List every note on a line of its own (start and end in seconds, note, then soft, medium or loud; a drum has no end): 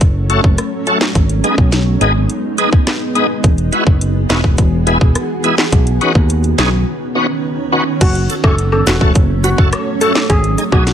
0.00 0.39 F#1 medium
0.00 1.13 F#3 medium
0.00 1.13 A3 medium
0.00 1.13 C#4 medium
0.00 kick medium
0.00 closed hi-hat medium
0.30 0.41 A3 medium
0.30 0.41 C#4 medium
0.30 0.41 F#4 medium
0.30 0.41 A4 loud
0.30 closed hi-hat medium
0.44 0.57 F#1 medium
0.44 kick medium
0.58 cross-stick medium
0.58 closed hi-hat medium
0.87 0.98 A3 medium
0.87 0.98 C#4 medium
0.87 0.98 F#4 medium
0.87 0.98 A4 medium
0.87 closed hi-hat medium
1.01 snare loud
1.01 clap medium
1.15 1.40 G#1 loud
1.15 3.42 G#3 medium
1.15 5.68 B3 medium
1.15 3.42 D#4 medium
1.15 kick loud
1.15 closed hi-hat medium
1.29 closed hi-hat medium
1.44 1.55 G#3 medium
1.44 1.55 B3 medium
1.44 1.55 D#4 medium
1.44 1.55 G#4 medium
1.44 closed hi-hat medium
1.58 1.96 B1 medium
1.58 kick medium
1.72 snare medium
1.72 closed hi-hat medium
2.01 2.26 G#1 loud
2.01 2.13 G#3 medium
2.01 2.13 B3 medium
2.01 2.13 D#4 medium
2.01 2.13 G#4 medium
2.01 closed hi-hat medium
2.30 closed hi-hat medium
2.58 2.70 G#3 medium
2.58 2.70 B3 medium
2.58 2.70 D#4 medium
2.58 2.70 G#4 loud
2.58 closed hi-hat medium
2.73 kick medium
2.87 cross-stick medium
2.87 snare loud
2.87 clap medium
2.87 closed hi-hat medium
3.15 3.27 G#3 medium
3.15 3.27 B3 medium
3.15 3.27 D#4 medium
3.15 3.27 G#4 medium
3.15 closed hi-hat medium
3.44 3.69 E1 loud
3.44 5.70 E3 medium
3.44 5.70 F#4 medium
3.44 5.70 G#4 medium
3.44 kick medium
3.44 closed hi-hat medium
3.58 closed hi-hat soft
3.72 3.84 G#3 medium
3.72 3.84 B3 medium
3.72 3.84 E4 medium
3.72 3.84 F#4 medium
3.72 closed hi-hat medium
3.87 4.24 F#1 medium
3.87 kick medium
4.01 closed hi-hat medium
4.29 4.55 E1 medium
4.29 4.41 G#3 medium
4.29 4.41 B3 medium
4.29 4.41 E4 medium
4.29 4.41 F#4 medium
4.29 snare loud
4.29 clap medium
4.29 closed hi-hat medium
4.44 kick medium
4.58 4.96 E1 loud
4.58 kick medium
4.58 closed hi-hat medium
4.87 4.98 G#3 medium
4.87 4.98 B3 medium
4.87 4.98 E4 medium
4.87 4.98 G#4 loud
4.87 closed hi-hat medium
5.01 5.14 E1 medium
5.01 kick medium
5.15 cross-stick medium
5.15 closed hi-hat medium
5.44 5.55 G#3 medium
5.44 5.55 B3 medium
5.44 5.55 E4 medium
5.44 5.55 G#4 medium
5.44 closed hi-hat medium
5.58 snare loud
5.58 clap medium
5.72 5.98 B1 loud
5.72 7.99 D#3 medium
5.72 7.99 B3 medium
5.72 7.99 C#4 medium
5.72 kick loud
5.72 closed hi-hat medium
5.87 closed hi-hat soft
6.01 6.13 B3 medium
6.01 6.13 C#4 medium
6.01 6.13 D#4 medium
6.01 6.13 F#4 loud
6.01 closed hi-hat medium
6.15 6.53 D#2 medium
6.15 kick medium
6.30 closed hi-hat medium
6.44 closed hi-hat medium
6.58 6.83 B1 loud
6.58 6.70 B3 medium
6.58 6.70 C#4 medium
6.58 6.70 D#4 medium
6.58 6.70 G#4 medium
6.58 snare loud
6.58 clap medium
6.58 closed hi-hat medium
7.15 7.27 B3 medium
7.15 7.27 C#4 medium
7.15 7.27 D#4 medium
7.15 7.27 F#4 medium
7.72 7.84 B3 medium
7.72 7.84 C#4 medium
7.72 7.84 D#4 medium
7.72 7.84 F#4 medium
8.01 8.26 F#1 loud
8.01 10.27 F#3 medium
8.01 10.27 A3 medium
8.01 10.28 C#4 medium
8.01 8.18 F#4 loud
8.01 kick loud
8.01 closed hi-hat medium
8.01 crash medium
8.15 closed hi-hat soft
8.30 8.35 F#4 medium
8.30 8.35 A4 medium
8.30 closed hi-hat medium
8.30 cabasa medium
8.44 8.81 F#1 medium
8.44 8.55 A3 medium
8.44 8.55 C#4 medium
8.44 8.55 F#4 medium
8.44 8.55 G#4 medium
8.44 8.53 A4 medium
8.44 kick medium
8.44 high woodblock medium
8.58 closed hi-hat medium
8.72 8.81 A4 medium
8.72 high woodblock medium
8.86 9.12 E1 medium
8.86 8.95 F#4 medium
8.86 8.93 F#4 medium
8.86 8.93 A4 medium
8.86 snare loud
8.86 clap medium
8.86 closed hi-hat medium
8.86 cabasa medium
9.01 9.12 A3 medium
9.01 9.12 C#4 medium
9.01 9.13 F#4 medium
9.01 9.13 A4 medium
9.01 kick loud
9.15 9.53 F#1 loud
9.15 kick loud
9.15 closed hi-hat medium
9.44 9.50 F#4 medium
9.44 9.53 F#4 medium
9.44 9.50 B4 medium
9.44 closed hi-hat medium
9.44 cabasa medium
9.58 9.71 F#1 loud
9.58 9.70 A3 medium
9.58 9.70 C#4 medium
9.58 9.70 F#4 medium
9.58 9.70 A4 medium
9.58 kick medium
9.73 cross-stick medium
9.73 closed hi-hat medium
9.73 high woodblock medium
10.01 10.13 A3 medium
10.01 10.13 C#4 medium
10.01 10.13 F#4 medium
10.01 10.10 A4 medium
10.01 10.13 A4 medium
10.01 closed hi-hat medium
10.01 cabasa medium
10.15 snare loud
10.15 clap loud
10.15 high woodblock medium
10.30 10.55 G#1 loud
10.30 10.93 G#3 medium
10.30 10.93 B3 medium
10.30 10.93 D#4 medium
10.30 10.47 G#4 loud
10.30 kick loud
10.30 closed hi-hat medium
10.44 closed hi-hat medium
10.58 10.64 D#4 medium
10.58 10.64 G#4 medium
10.58 closed hi-hat medium
10.58 cabasa medium
10.72 10.93 B1 medium
10.72 10.84 G#3 medium
10.72 10.84 B3 medium
10.72 10.84 D#4 medium
10.72 10.81 F#4 medium
10.72 10.84 G#4 medium
10.72 kick medium
10.72 high woodblock medium
10.87 snare medium
10.87 closed hi-hat medium